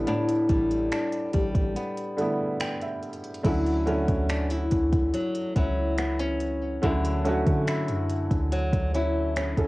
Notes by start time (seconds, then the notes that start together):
Already playing: D3 G3 A3 B3 E4
0.07 A2 D4, closed hi-hat
0.29 closed hi-hat
0.49 A1 G3, kick, closed hi-hat
0.71 closed hi-hat
0.91 D4, finger snap, closed hi-hat
1.12 closed hi-hat
1.33 A1 G3, kick, closed hi-hat
1.55 A1, kick, closed hi-hat
1.76 B3, closed hi-hat
1.97 closed hi-hat
2.17 D3 G3 A3 B3, closed hi-hat
2.21 E4
2.60 G5, finger snap, closed hi-hat
2.81 E5, closed hi-hat
3.03 closed hi-hat
3.13 closed hi-hat
3.24 closed hi-hat
3.34 closed hi-hat
3.43 D2 D3 F#3 A3 C#4 E4, kick, closed hi-hat, crash
3.48 E4
3.66 closed hi-hat
3.86 D3 F#3 A3 C#4, closed hi-hat
3.90 E4
4.08 D2, kick, closed hi-hat
4.29 D4, finger snap, closed hi-hat
4.50 E4, closed hi-hat
4.71 D2, kick, closed hi-hat
4.93 kick, closed hi-hat
5.14 F#3, closed hi-hat
5.35 closed hi-hat
5.56 C#2 F#3 C#4 E4, kick, closed hi-hat
5.98 B3, finger snap, closed hi-hat
6.19 C#4, closed hi-hat
6.40 closed hi-hat
6.82 D2 D3 F#3 A3 C#4 E4, kick, closed hi-hat
6.86 E4
7.05 closed hi-hat
7.24 D3 F#3 A3 C#4 F#4, closed hi-hat
7.47 D3, kick, closed hi-hat
7.67 E4, finger snap, closed hi-hat
7.88 F#2, closed hi-hat
8.10 closed hi-hat
8.31 D2, kick, closed hi-hat
8.52 F#3, closed hi-hat
8.73 D2, kick, closed hi-hat
8.94 F#3 C#4 E4, closed hi-hat
9.36 C#4, finger snap, closed hi-hat
9.57 D2 C#4 A4, kick, closed hi-hat